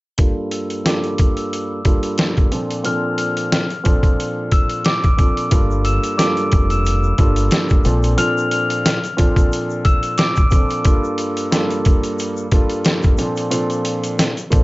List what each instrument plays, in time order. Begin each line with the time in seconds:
0.18 grand piano G2 G3 A#3 F4 A4, kick, closed hi-hat
0.51 glockenspiel E6, closed hi-hat
0.70 closed hi-hat
0.84 grand piano G2 G3 A#3 F4 A4, glockenspiel D6, snare, closed hi-hat
1.04 closed hi-hat
1.18 kick, closed hi-hat
1.37 glockenspiel E6 E7, closed hi-hat
1.53 closed hi-hat
1.85 grand piano G2 G3 A#3 F4 A4, kick, closed hi-hat
2.03 closed hi-hat
2.18 snare, closed hi-hat
2.37 kick, closed hi-hat
2.52 grand piano A#2 F3 C4 D4 A4, closed hi-hat
2.71 closed hi-hat
2.84 grand piano A#2 F3 C4 D4 A4, glockenspiel F6 F7, closed hi-hat
3.18 glockenspiel F6 F7, closed hi-hat
3.37 closed hi-hat
3.52 snare, closed hi-hat
3.70 closed hi-hat
3.84 grand piano A#2 F3 C4 D4 A4, kick, closed hi-hat
4.03 kick, closed hi-hat
4.20 closed hi-hat
4.52 glockenspiel E6 E7, kick, closed hi-hat
4.70 closed hi-hat
4.85 glockenspiel D6 D7, snare, closed hi-hat
5.04 kick, closed hi-hat
5.17 grand piano A#2 F3 C4 D4 A4, kick, closed hi-hat
5.37 closed hi-hat
5.51 fingered electric bass G1, grand piano G2 G3 A#3 F4 A4, kick, closed hi-hat, shaker
5.71 shaker
5.85 glockenspiel E6 E7, closed hi-hat, shaker
6.03 closed hi-hat, shaker
6.17 grand piano G2 G3 A#3 F4 A4, glockenspiel D6 D7, snare, closed hi-hat, shaker
6.37 closed hi-hat, shaker
6.52 fingered electric bass F1, kick, closed hi-hat
6.70 glockenspiel E6 E7, closed hi-hat, shaker
6.86 closed hi-hat, shaker
7.04 shaker
7.18 fingered electric bass G1, grand piano G2 G3 A#3 F4 A4, kick, closed hi-hat
7.36 closed hi-hat, shaker
7.51 snare, closed hi-hat, shaker
7.69 kick, closed hi-hat, shaker
7.85 fingered electric bass A#1, grand piano A#2 F3 C4 D4 A4, closed hi-hat, shaker
8.03 closed hi-hat, shaker
8.17 grand piano A#2 F3 C4 D4 A4, glockenspiel F6 F7, closed hi-hat, shaker
8.38 shaker
8.51 glockenspiel F6 F7, closed hi-hat, shaker
8.70 closed hi-hat, shaker
8.86 snare, closed hi-hat, shaker
9.04 closed hi-hat, shaker
9.17 grand piano A#2 F3 C4 D4 A4, kick, closed hi-hat
9.36 kick, closed hi-hat, shaker
9.53 closed hi-hat, shaker
9.70 shaker
9.85 glockenspiel E6 E7, kick, closed hi-hat
10.03 closed hi-hat, shaker
10.18 glockenspiel D6 D7, snare, closed hi-hat, shaker
10.36 kick, closed hi-hat, shaker
10.51 grand piano A#2 F3 C4 D4 A4, kick, closed hi-hat, shaker
10.70 closed hi-hat, shaker
10.84 grand piano G2 G3 A#3 F4 A4, kick, closed hi-hat, shaker
11.04 shaker
11.18 closed hi-hat, shaker
11.37 closed hi-hat, shaker
11.51 grand piano G2 G3 A#3 F4 A4, snare, closed hi-hat, shaker
11.70 closed hi-hat, shaker
11.85 kick, closed hi-hat
12.03 closed hi-hat, shaker
12.19 closed hi-hat, shaker
12.37 shaker
12.51 grand piano G2 G3 A#3 F4 A4, kick, closed hi-hat
12.70 closed hi-hat, shaker
12.85 snare, closed hi-hat, shaker
13.02 kick, closed hi-hat, shaker
13.18 grand piano A#2 F3 C4 D4 A4, closed hi-hat, shaker
13.36 closed hi-hat, shaker
13.51 grand piano A#2 F3 C4 D4 A4, closed hi-hat, shaker
13.70 closed hi-hat, shaker
13.85 closed hi-hat, shaker
14.04 closed hi-hat, shaker
14.19 snare, closed hi-hat, shaker
14.37 closed hi-hat, shaker
14.50 fingered electric bass A#1, grand piano F3 A#3 C4 D4 A4, kick, closed hi-hat, shaker